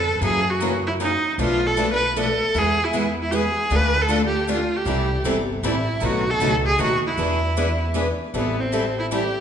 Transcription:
Already playing: F2 A4
0.21 F#2 C#3 E3 F#3 A#3 C#4 E4 F#4 G#4 A#4
0.50 F#4
0.60 C#3 E3 F#3 A#3 C#4 E4 F#4 A#4
0.87 E4
1.00 C#3 E3 F#3 A#3 C#4 D#4 E4 F#4 A#4
1.38 B1 B2 F3 A3 D4 F4 A4 B4
1.67 A4
1.77 B2 F3 A3 D4 A4 B4
1.93 B4
2.16 B2 F3 A3 D4 A4 B4
2.54 E2 E3 G#3 B3 E4 G#4
2.84 E4
2.94 E3 G#3 B3 E4 G#4
3.22 E4
3.31 E3 G#3 B3 E4 G4 G#4
3.36 G#4
3.70 D2 D3 A3 D4 F4 A4
3.75 B4
4.02 A4
4.08 D3 A3 D4 F4 A4
4.27 G4
4.48 D3 A3 D4 F4 A4
4.52 F4
4.76 G4
4.85 C2 C3 E3 G3 C4 E4 A4
5.24 G1 C3 E3 G3 C4 E4 A4
5.63 A1 C3 E3 G3 C4 E4 A4
6.00 B1 B2 D#3 F#3 A3 B3 D#4 F#4 A4
6.05 F#4
6.30 A4
6.40 C#2 B2 D#3 F#3 A3 B3 D#4 F#4 A4
6.66 G#4
6.78 D#2 B2 D#3 F#3 A3 B3 D#4 F#4 A4
7.07 E4
7.17 E2 E3 B3 D4 G#4 B4
7.57 E3 B3 D4 G#4 B4
7.94 E3 B3 D4 G#4 B4
8.34 A1 E3 G3 B3 C4 E4 A4
8.60 C4
8.73 E3 G3 C4 E4 A4
8.99 E4
9.11 E3 G3 C4 E4 G4 A4

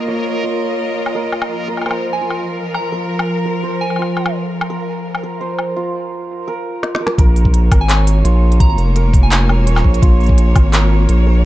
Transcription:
Already playing: A#3 F4 A#4 D#5
0.08 C#5
0.44 F4
1.06 low woodblock
1.15 A#4
1.32 low woodblock
1.42 low woodblock
1.50 F3
1.58 A#4
1.68 A#4
1.77 low woodblock
1.82 low woodblock
1.86 C5, low woodblock
1.91 low woodblock
2.13 G#5
2.21 F4
2.31 low woodblock
2.74 A#5, low woodblock
2.92 A#4
3.19 low woodblock
3.46 A#4
3.63 C5
3.81 G#5
3.90 low woodblock
3.96 F4, low woodblock
4.02 low woodblock
4.17 low woodblock
4.26 low woodblock
4.61 low woodblock
4.70 A#4
5.15 low woodblock
5.23 A#4
5.41 C5
5.59 low woodblock
5.76 F4
6.48 A#4
6.83 snare
6.95 snare
7.01 A#4
7.07 snare
7.18 A#1 A#3 A#4, kick, closed hi-hat
7.35 C#5, open hi-hat
7.45 kick
7.54 closed hi-hat
7.71 G#1 A#4, kick, open hi-hat, low woodblock
7.81 G#5
7.89 C#5, clap, closed hi-hat
8.07 open hi-hat
8.25 A#1 F4, closed hi-hat
8.52 closed hi-hat
8.60 A#5, kick, closed hi-hat
8.70 A#5
8.78 F1, open hi-hat
8.96 A#4, closed hi-hat
9.13 kick, open hi-hat
9.23 G#5
9.32 clap, closed hi-hat
9.49 E1 A#4, low woodblock
9.67 C#5, closed hi-hat
9.76 clap, low woodblock
9.84 A#1, kick
9.94 closed hi-hat
10.02 A#1 F4, kick, closed hi-hat
10.20 open hi-hat
10.23 open hi-hat
10.26 kick, open hi-hat
10.38 closed hi-hat
10.56 G#1, kick, open hi-hat, low woodblock
10.73 A#4, clap, closed hi-hat
11.09 A#1, closed hi-hat
11.27 A#4

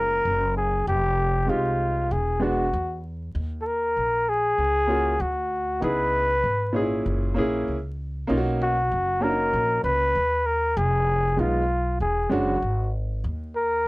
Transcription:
Already playing: F#1 G#3 A#3 C#4 F4 A#4
0.25 F#1
0.57 G#4
0.87 F1 G4
1.46 G#3 C4 D#4 F4 G4
2.11 E1 G#4
2.40 G#3 B3 D4 F#4
2.73 E2
3.35 D#2
3.61 A4
3.67 A#4
3.97 A#1
4.29 G#4
4.58 C#2
4.87 A#3 C#4 F4 F#4
5.20 D2 F#4
5.80 C#2 B3 D#4 E4 G#4 B4
6.44 G#1
6.73 A#2 C#4 D#4 G#4
6.81 E4
7.06 F#1
7.34 A#1 A#3 C#4 E4 G#4
7.68 C#2
8.27 B1 A#3 C#4 D#4 F4
8.37 F#4
8.62 F#4
8.91 F#1
9.20 A#3 C#4 D4 F#4 A#4
9.29 D#4
9.53 A#1
9.84 C#2 B4
10.15 D#2
10.46 A#4
10.77 F1 G#4
11.37 B1 G#3 B3 D#4 F4
12.00 E1 G#4
12.29 F#1 G#3 C#4 D4 F#4
12.62 G#1
13.24 D#2
13.56 A#4

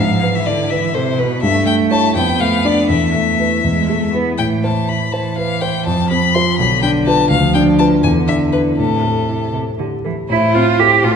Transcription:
Already playing: G#2 F5
0.00 F3
0.22 B4
0.35 E3 E5
0.46 D3 E4 D5
0.70 E3 B4 E5
0.94 C3 A4 C5
1.19 B2 B4
1.42 G2 A3 E5
1.66 A3 G5
1.91 E4 C#5 A5
2.15 F2 B3 G5
2.39 A3 F5
2.65 D4 D5
2.90 E2 A3 E5
3.14 A3
3.39 E4 B4
3.64 E2 G#3
3.89 G#3 A3
4.13 B3 E4 B4
4.38 A2 E3 G5
4.64 C5 A5
4.89 E4 B5
5.12 E3 C5 A5
5.37 B4 F5
5.61 C5 G5
5.85 F2 F3 A5
6.10 C4 B5
6.34 F4 C5 C6
6.58 B1 D3 B5
6.82 D4 G5
7.06 F4 B4 A5
7.30 D2 F3 F5
7.54 D4 G5
7.79 F4 B4 A5
8.03 E2 D3 G#5
8.28 D4 E5
8.52 E4 B4
8.78 A2 C3 A4
9.03 A4
9.29 E4
9.53 C3 A4
9.79 D3 G4
10.05 E3 A4
10.29 A2 E4 C5
10.54 C4 F4
10.79 E4 G4 A4
11.04 A2 F4 A4

